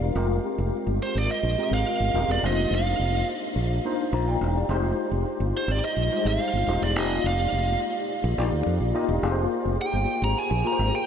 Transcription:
0.00 0.19 G3 medium
0.00 0.18 A#3 medium
0.00 0.18 D4 medium
0.00 0.03 F4 medium
0.00 0.15 F4 soft
0.00 0.17 G4 medium
0.00 0.02 A#4 medium
0.00 0.16 A#4 medium
0.00 0.18 C5 soft
0.00 0.18 D5 medium
0.00 0.18 F5 medium
0.15 0.38 F1 loud
0.15 1.16 G#3 medium
0.15 1.16 C4 medium
0.15 1.16 F4 medium
0.15 1.16 G4 medium
0.15 1.17 A#4 medium
0.58 0.70 F1 medium
0.87 0.98 G1 medium
1.03 1.18 C5 medium
1.15 1.27 G#1 medium
1.15 1.31 D5 medium
1.31 1.74 D#5 medium
1.43 1.55 A#1 medium
1.58 2.08 G#3 medium
1.58 2.08 C4 medium
1.58 2.08 F4 medium
1.58 2.09 G4 medium
1.58 2.09 A#4 medium
1.71 1.83 G#1 medium
1.71 2.31 F5 loud
2.00 2.12 G1 medium
2.14 2.25 D#1 medium
2.14 2.40 G#3 medium
2.14 2.40 C4 medium
2.14 2.40 F4 medium
2.14 2.40 G4 medium
2.14 2.40 A#4 medium
2.28 2.40 E1 medium
2.28 2.46 D5 medium
2.43 2.65 F1 medium
2.43 3.43 A#3 medium
2.43 3.43 D4 medium
2.43 3.43 D#4 medium
2.43 3.44 F4 medium
2.43 3.44 C5 medium
2.43 2.73 D#5 medium
2.71 2.93 F1 medium
2.75 3.26 F5 medium
2.99 3.22 F1 medium
3.56 3.78 A#1 medium
3.85 4.35 A#3 medium
3.85 4.35 D4 medium
3.85 4.35 D#4 medium
3.85 4.35 F4 medium
3.85 4.14 C5 medium
4.13 4.35 A#1 medium
4.13 4.28 F5 medium
4.13 4.27 A#5 medium
4.28 4.55 D5 medium
4.28 4.55 G5 medium
4.41 4.63 E1 medium
4.57 4.69 G4 medium
4.57 4.83 D5 medium
4.69 4.92 F1 loud
4.69 5.70 G#3 medium
4.69 5.70 D#4 medium
4.69 5.70 F4 medium
4.69 5.70 G4 medium
4.69 5.70 C5 loud
5.11 5.23 F1 medium
5.40 5.52 G1 medium
5.57 5.69 C5 medium
5.68 5.80 G#1 medium
5.68 5.84 D5 medium
5.85 6.27 D#5 loud
5.97 6.08 A#1 medium
6.11 6.18 G3 medium
6.11 6.62 D#4 medium
6.11 6.62 F4 medium
6.11 6.62 G4 medium
6.11 6.62 C5 medium
6.18 6.65 G#3 medium
6.25 6.37 G#1 medium
6.25 6.83 F5 loud
6.54 6.65 G1 medium
6.67 6.79 D#1 medium
6.67 6.93 G#3 medium
6.67 6.93 D#4 medium
6.67 6.93 F4 medium
6.67 6.93 G4 medium
6.67 6.94 C5 medium
6.82 6.96 E1 medium
6.82 6.98 D5 medium
6.96 7.18 F1 medium
6.96 7.96 A#3 medium
6.96 7.96 D#4 medium
6.96 7.97 F4 medium
6.96 7.97 G4 medium
6.96 7.04 C5 medium
6.96 7.26 D#5 medium
7.04 8.00 D5 medium
7.24 7.47 F1 medium
7.24 7.79 F5 medium
7.52 7.75 F1 medium
8.24 8.35 A#1 loud
8.38 8.49 A#1 medium
8.38 8.88 A#3 medium
8.38 8.88 D#4 medium
8.38 8.88 F4 medium
8.38 8.88 G4 medium
8.38 8.88 D5 medium
8.52 8.63 D2 medium
8.66 8.78 F2 medium
8.80 8.92 A#1 medium
8.94 9.19 A#3 medium
8.94 9.20 D#4 medium
8.94 9.20 F4 medium
8.94 9.20 G4 medium
8.94 9.20 D#5 loud
9.09 9.20 E1 medium
9.23 9.45 F1 loud
9.23 10.23 A#3 medium
9.23 10.23 F4 medium
9.23 10.23 G4 medium
9.23 10.24 G#4 medium
9.23 9.30 A#4 medium
9.31 10.27 C5 medium
9.65 9.77 F1 medium
9.81 10.20 G5 medium
9.93 10.05 G1 medium
10.22 10.33 G#1 medium
10.22 10.38 A#5 medium
10.38 10.67 G#5 loud
10.51 10.62 A#1 medium
10.64 11.07 A#3 medium
10.64 11.07 F4 medium
10.64 11.07 G4 medium
10.64 11.07 G#4 medium
10.64 10.72 A#4 medium
10.64 10.95 A#5 loud
10.72 11.07 C5 medium
10.79 10.90 G#1 medium
10.95 11.02 G5 medium

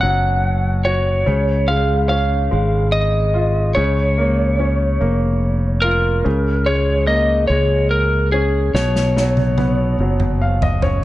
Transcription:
0.00 1.23 F#1 medium
0.00 1.23 B2 medium
0.00 0.03 F#3 soft
0.00 1.24 F#3 soft
0.00 1.23 C#4 soft
0.00 0.81 F#5 medium
0.85 1.26 F#4 soft
0.85 1.71 C#5 medium
1.26 2.48 C#2 medium
1.26 3.72 C#3 medium
1.68 2.50 G#3 soft
1.68 2.08 F5 medium
2.09 3.72 C#4 soft
2.09 2.92 F5 medium
2.51 3.73 G#1 medium
2.51 3.72 G#3 soft
2.92 3.72 D#5 medium
3.34 3.75 F4 soft
3.75 4.97 C#2 medium
3.75 6.21 C#3 medium
3.75 5.79 C#5 medium
4.18 4.99 A#3 soft
4.59 6.21 C#4 soft
5.01 6.22 F1 medium
5.01 6.22 A#3 soft
5.82 6.24 F4 soft
5.82 6.68 A#4 medium
6.25 7.46 C#2 medium
6.25 8.70 C#3 soft
6.66 7.48 G#3 soft
6.66 7.07 C#5 medium
7.07 8.70 A#3 soft
7.07 7.46 D#5 medium
7.47 8.70 C#2 medium
7.47 8.70 G#3 soft
7.47 7.87 C#5 medium
7.91 8.30 A#4 medium
8.32 8.73 C#4 soft
8.32 8.71 G#4 medium
8.74 9.95 B1 medium
8.74 11.04 B2 medium
8.74 10.37 C#5 medium
8.74 snare soft
8.96 snare soft
9.17 9.99 F#3 soft
9.17 snare soft
9.37 high tom soft
9.58 11.04 B3 soft
9.58 high tom medium
9.99 11.04 F#1 medium
9.99 11.04 F#3 soft
10.20 mid tom medium
10.42 10.60 F5 medium
10.62 10.81 D#5 soft
10.62 floor tom medium
10.82 11.04 C#4 soft
10.82 11.04 C#5 medium
10.82 floor tom medium

